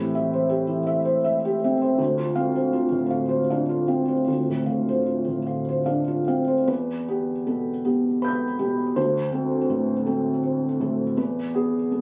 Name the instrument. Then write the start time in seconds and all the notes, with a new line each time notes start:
felt piano
Already playing: A2 E3 C4 G4
0.15 E3 E5
0.33 C5
0.50 G4
0.68 E3
0.87 E5
1.05 C5
1.24 E5
1.45 G4
1.64 C4 E5
1.82 C5
1.98 D2 C5
2.18 F4
2.35 C4 F5
2.56 C5
2.73 F4
2.92 A2
3.11 F5
3.29 C5
3.50 D4 F5
3.69 F4
3.88 C4 F5
4.08 C5
4.28 D2 F4
4.50 A2
4.66 A2 F5
4.89 C5
5.06 F4
5.28 A2
5.47 F5
5.69 C5
5.86 D4 F5
6.08 F4
6.28 C4 F5
6.48 C5
6.67 E2 B4
7.08 B3 G4
7.47 B2 A4
7.85 B3 G4
8.22 B4 B5 G6
8.28 G6
8.59 B2 G4
8.96 D2 C5
9.32 C4 A4
9.70 A2 B4
10.06 C4 A4
10.43 C5
10.80 A2 A4
11.17 E2 B4
11.55 B3 G#4
11.91 B2 A4